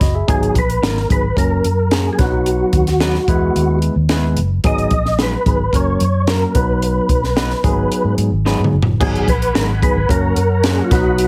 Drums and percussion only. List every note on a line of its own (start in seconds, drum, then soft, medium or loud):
0.01 kick medium
0.01 snare soft
0.01 closed hi-hat medium
0.28 kick loud
0.28 closed hi-hat medium
0.43 closed hi-hat soft
0.55 kick medium
0.55 closed hi-hat medium
0.70 closed hi-hat medium
0.83 snare loud
0.83 closed hi-hat medium
0.97 snare soft
1.10 kick medium
1.10 closed hi-hat medium
1.37 kick medium
1.37 closed hi-hat medium
1.64 closed hi-hat medium
1.91 snare loud
1.91 closed hi-hat medium
2.19 kick medium
2.19 snare soft
2.19 closed hi-hat medium
2.46 closed hi-hat medium
2.73 kick medium
2.73 closed hi-hat medium
2.87 snare soft
2.87 closed hi-hat medium
3.00 snare medium
3.00 closed hi-hat medium
3.14 snare soft
3.28 kick medium
3.28 closed hi-hat medium
3.56 closed hi-hat medium
3.82 closed hi-hat medium
4.09 snare loud
4.09 closed hi-hat medium
4.37 closed hi-hat medium
4.64 kick loud
4.64 closed hi-hat medium
4.78 closed hi-hat soft
4.91 kick medium
4.91 closed hi-hat medium
5.05 snare soft
5.19 snare loud
5.19 closed hi-hat medium
5.46 kick medium
5.46 closed hi-hat medium
5.73 kick medium
5.73 closed hi-hat medium
6.00 closed hi-hat medium
6.27 snare loud
6.27 closed hi-hat medium
6.55 kick medium
6.55 closed hi-hat medium
6.82 closed hi-hat medium
7.09 kick medium
7.09 closed hi-hat medium
7.24 snare soft
7.37 snare medium
7.37 closed hi-hat medium
7.50 snare soft
7.64 kick medium
7.64 closed hi-hat medium
7.92 closed hi-hat medium
8.18 closed hi-hat medium
8.46 snare medium
8.64 mid tom medium
8.82 floor tom medium
9.01 kick loud
9.01 crash medium
9.15 closed hi-hat soft
9.28 kick medium
9.28 closed hi-hat medium
9.42 closed hi-hat medium
9.55 snare loud
9.55 closed hi-hat medium
9.82 kick medium
9.82 closed hi-hat medium
10.09 kick medium
10.09 closed hi-hat medium
10.36 closed hi-hat medium
10.64 snare loud
10.64 closed hi-hat medium
10.91 kick medium
10.91 snare soft
10.91 closed hi-hat medium
11.18 closed hi-hat medium